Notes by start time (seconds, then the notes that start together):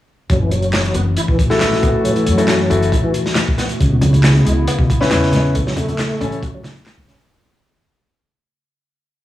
0.30 F#1 E3 F#3 A3 F#4, kick, closed hi-hat
0.41 E3
0.51 F#3, closed hi-hat
0.62 closed hi-hat
0.73 snare, clap, closed hi-hat
0.85 closed hi-hat
0.94 F#1 B3, closed hi-hat
1.17 E4, closed hi-hat
1.28 E3, kick
1.39 kick, closed hi-hat
1.50 E4 F#4 A4, muted upright bass stroke, snare
1.61 A1, snare, clap, closed hi-hat
1.73 snare
1.83 B3, kick, closed hi-hat
2.04 F#3, closed hi-hat
2.16 E3, closed hi-hat
2.26 F#2 F#3, closed hi-hat
2.38 E4 F#4 A4, closed hi-hat
2.48 snare, clap, closed hi-hat
2.70 F#1 B3 E4 F#4 A4, closed hi-hat
2.82 closed hi-hat
2.92 E4, kick, closed hi-hat
3.04 E3
3.14 closed hi-hat
3.26 snare
3.35 snare, clap, closed hi-hat
3.48 kick
3.58 B3, snare, closed hi-hat
3.69 closed hi-hat
3.79 C#2 C#3 B3 E4, kick, closed hi-hat
3.92 B2
4.01 C#3, closed hi-hat, low conga
4.13 closed hi-hat, low conga
4.23 snare, clap, closed hi-hat, high conga
4.36 closed hi-hat
4.45 C#2 G#3, closed hi-hat
4.67 B3, closed hi-hat
4.79 B2, kick
4.90 kick, closed hi-hat
5.01 C#4 E4 B4, muted upright bass stroke, snare
5.11 E2, snare, clap, closed hi-hat
5.23 snare
5.32 G#3, snare, closed hi-hat, high conga, low conga
5.55 A3, kick, closed hi-hat
5.67 F#3, snare
5.76 A1 A3, closed hi-hat, low conga
5.88 closed hi-hat, low conga
5.98 snare, clap, closed hi-hat, high conga
6.20 A1 C#4 E4 A4, closed hi-hat
6.32 closed hi-hat
6.43 F#4, kick, closed hi-hat
6.55 F#3
6.63 snare, closed hi-hat, high conga
6.76 closed hi-hat
6.86 snare, clap, closed hi-hat
6.97 kick
7.08 C#4, snare, closed hi-hat, high conga
7.20 closed hi-hat